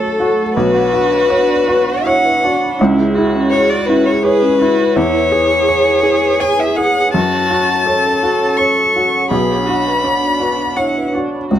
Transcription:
Already playing: felt piano F#2 F#4 C#5, analog synth pad A3 F#4 C#5, violin A4, viola A4
0.00 vibraphone F#4
0.19 felt piano F#4, vibraphone A4
0.37 vibraphone F#5
0.54 felt piano B1, analog synth pad D4, viola F#4, violin B4, vibraphone B4
0.74 vibraphone F#5
0.91 felt piano F#4, vibraphone F#5
1.10 vibraphone B4
1.28 felt piano C#5, vibraphone F#5
1.48 vibraphone D5
1.67 felt piano F#4, vibraphone B4
1.87 vibraphone F#5
2.04 viola E4, felt piano C#5, violin F#5
2.25 vibraphone B4
2.43 viola D4, felt piano F#4, vibraphone D5
2.63 vibraphone B5
2.79 felt piano C#2, vibraphone C#4, viola E4, analog synth pad E4 G#4 C#5
2.99 vibraphone G#4
3.15 felt piano E4, viola F#4, vibraphone G#4
3.35 vibraphone C#4
3.50 vibraphone G#4, violin C#5, felt piano C#5
3.69 vibraphone E4, violin D5
3.86 vibraphone C#4, felt piano E4, violin B4
4.06 vibraphone G#4, violin C#5
4.23 viola G#4, vibraphone G#4, violin B4, felt piano C#5
4.42 vibraphone C#4
4.60 vibraphone E4, felt piano E4, viola F#4
4.79 vibraphone B4
4.96 felt piano E2, viola E4, vibraphone E4, analog synth pad B4, violin C#5
5.15 vibraphone B4
5.32 viola G#4, felt piano G#4, vibraphone B4
5.52 vibraphone E4
5.68 vibraphone B4, felt piano C#5
5.86 vibraphone G#4
6.03 vibraphone E4, felt piano G#4
6.23 vibraphone B4
6.40 vibraphone B4, felt piano C#5, violin G#5
6.59 vibraphone E4, violin E5
6.76 felt piano G#4, vibraphone G#4, violin F#5
6.96 vibraphone C#5
7.13 felt piano F#2, analog synth pad C#4 F#4 C#5, viola F#4, vibraphone F#4, violin A5
7.34 vibraphone C#5
7.51 felt piano F#4, vibraphone C#5
7.70 vibraphone F#4
7.86 viola A4, felt piano C#5
8.06 vibraphone A4
8.23 felt piano F#4, vibraphone F#4
8.42 vibraphone C#5
8.57 felt piano C#5, violin C#6
8.78 vibraphone F#4
8.96 felt piano F#4, vibraphone A4
9.15 vibraphone F#5
9.29 felt piano B1, analog synth pad D4, viola G#4, violin B5
9.33 vibraphone B4
9.50 vibraphone F#5
9.67 viola F#4, felt piano F#4, vibraphone F#5
9.87 vibraphone B4
10.03 viola D4, felt piano C#5, vibraphone F#5
10.25 vibraphone D5
10.40 felt piano F#4, vibraphone B4
10.60 vibraphone F#5
10.77 viola E4, felt piano C#5, violin F#5
10.97 vibraphone B4
11.14 viola D4, felt piano F#4, vibraphone D5
11.35 vibraphone B5
11.50 felt piano C#2, analog synth pad B3 C#5 G#5, vibraphone C#4, viola F#4

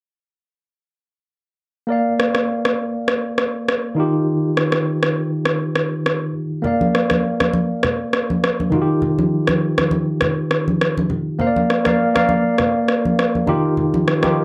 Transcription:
1.87 tine electric piano A#3 A#4 D5
1.92 tine electric piano F5
2.20 cross-stick
2.35 cross-stick
2.65 cross-stick
3.08 cross-stick
3.38 cross-stick
3.69 cross-stick
3.95 tine electric piano D#3 D#4 F4
4.00 tine electric piano G4
4.57 cross-stick
4.72 cross-stick
5.03 cross-stick
5.45 cross-stick
5.76 cross-stick
6.06 cross-stick
6.62 tine electric piano A#3 A#4 D5, low conga
6.67 tine electric piano F5
6.81 high conga
6.95 cross-stick
7.10 cross-stick, high conga
7.40 cross-stick, high conga
7.53 high conga
7.83 cross-stick, low conga
8.13 cross-stick
8.30 high conga
8.44 cross-stick
8.60 high conga
8.70 tine electric piano D#3 D#4 F4, low conga
8.75 tine electric piano F#4
8.82 tine electric piano G4
9.02 low conga
9.19 high conga
9.47 cross-stick, high conga
9.78 cross-stick, high conga
9.91 high conga
10.21 cross-stick, low conga
10.51 cross-stick
10.68 high conga
10.81 cross-stick
10.98 high conga
11.10 low conga
11.39 tine electric piano A#3 A#4 C5 F5, low conga
11.47 tine electric piano D5
11.56 high conga
11.70 cross-stick
11.85 tine electric piano A#3 A#4 D5 F5, cross-stick, high conga
12.14 tine electric piano A#3 A#4 D5 F5, cross-stick, high conga
12.29 high conga
12.58 cross-stick, low conga
12.88 cross-stick
13.05 high conga
13.19 cross-stick
13.35 high conga
13.47 tine electric piano D#3 D#4 F4 G4, low conga
13.77 low conga
13.94 high conga
14.08 cross-stick
14.22 tine electric piano D#3 D#4 F4 G4, cross-stick, high conga

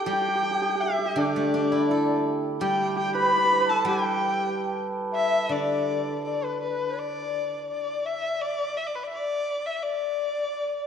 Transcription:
Already playing: hammered dulcimer A4
0.06 guzheng G3, hammered dulcimer G4, erhu G5, xiao G5
0.13 hammered dulcimer G4
0.21 hammered dulcimer G4
0.28 hammered dulcimer G4
0.35 hammered dulcimer G4
0.43 hammered dulcimer G4
0.51 hammered dulcimer G4
0.62 hammered dulcimer G4, xiao G5
0.69 hammered dulcimer G4
0.75 hammered dulcimer G4
0.80 hammered dulcimer G4, xiao E5, erhu E5
0.90 hammered dulcimer G4
0.99 hammered dulcimer G4
1.06 hammered dulcimer G4
1.16 guzheng D3, hammered dulcimer D4, xiao D5, erhu D5
1.25 xiao E5
1.33 guzheng A3, xiao D5
1.39 xiao E5
1.47 xiao D5
1.54 guzheng D4, xiao E5
1.61 xiao D5
1.71 guzheng E4, xiao E5
1.79 xiao D5
1.87 hammered dulcimer E4, guzheng A4, xiao E5
1.93 xiao D5
2.61 guzheng G3, hammered dulcimer G4, xiao G5, erhu G5
2.95 hammered dulcimer G4, xiao G5, erhu G5
3.14 hammered dulcimer B4, xiao B5, erhu B5
3.22 hammered dulcimer B4
3.31 hammered dulcimer B4
3.37 hammered dulcimer B4
3.45 hammered dulcimer B4
3.52 hammered dulcimer B4
3.60 hammered dulcimer B4
3.67 hammered dulcimer A4, xiao A5, erhu A5
3.85 guzheng G3, hammered dulcimer G4, xiao F#5, erhu G5
3.98 xiao G5
5.12 xiao E5, erhu E5
5.49 guzheng D3, xiao D5, erhu D5
6.25 erhu D5, xiao D5
6.43 xiao B4, erhu B4
6.62 xiao B4, erhu B4
6.97 xiao D5, erhu D5
7.70 xiao D5, erhu D5
8.05 xiao E5, erhu E5
8.40 xiao D5, erhu D5
8.77 erhu E5
8.87 erhu D5
8.96 erhu B4
9.03 erhu D5 E5
9.13 xiao D5, erhu D5
9.66 xiao E5, erhu E5
9.77 xiao E5
9.83 xiao D5, erhu D5

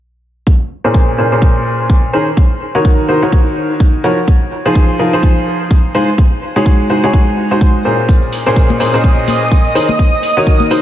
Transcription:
0.47 kick
0.84 upright piano A#2 C#4 G#4 A#4 C5
0.94 kick
1.18 upright piano A#2 C#4 G#4 A#4 C5
1.32 upright piano A#2 C#4 G#4 A#4 C5
1.42 kick
1.90 kick
2.13 upright piano D#3 C#4 G#4 A#4 C5
2.37 kick
2.75 upright piano D#3 D#4 F#4 A#4 C#5
2.85 kick
3.09 upright piano D#3 D#4 F#4 A#4 C5
3.22 upright piano D#3 D#4 F#4 A#4 C#5
3.32 kick
3.80 kick
4.04 upright piano F3 D#4 F#4 A#4 C#5
4.28 kick
4.66 upright piano F3 D#4 F4 G#4 C5
4.75 kick
4.99 upright piano F3 D#4 F4 G#4 A#4
5.13 upright piano F3 D#4 F4 G#4 C5
5.23 kick
5.71 kick
5.95 upright piano G#3 D#4 F4 G#4 C5
6.18 kick
6.56 upright piano G#3 D#4 F#4 G#4 C#5
6.66 kick
6.90 upright piano G#3 D#4 F#4 G#4 C5
7.04 upright piano G#3 D#4 F#4 G#4 C#5
7.13 kick
7.51 upright piano G#3 D#4 F#4 G#4 C5
7.61 kick
7.85 upright piano A#2 C#4 G#4 A#4 C5
8.09 analog synth pad D#5 D#6, kick, tambourine
8.22 tambourine
8.33 open hi-hat
8.46 upright piano A#2 C#4 G#4 A#4 C5, tambourine
8.56 kick, tambourine
8.70 tambourine, high conga
8.80 upright piano A#2 C#4 G#4 A#4 C5, open hi-hat
8.93 upright piano A#2 C#4 G#4 A#4 C5, tambourine
9.03 kick, tambourine
9.18 tambourine
9.28 open hi-hat, high conga
9.42 tambourine
9.51 kick, tambourine
9.64 tambourine
9.75 upright piano D#3 C#4 G#4 A#4 C5, open hi-hat
9.88 tambourine, high conga
9.99 kick, tambourine
10.13 tambourine
10.23 open hi-hat
10.37 upright piano D#3 D#4 F#4 A#4 C#5, tambourine
10.47 kick, tambourine
10.60 tambourine, high conga
10.71 upright piano D#3 D#4 F#4 A#4 C5, open hi-hat

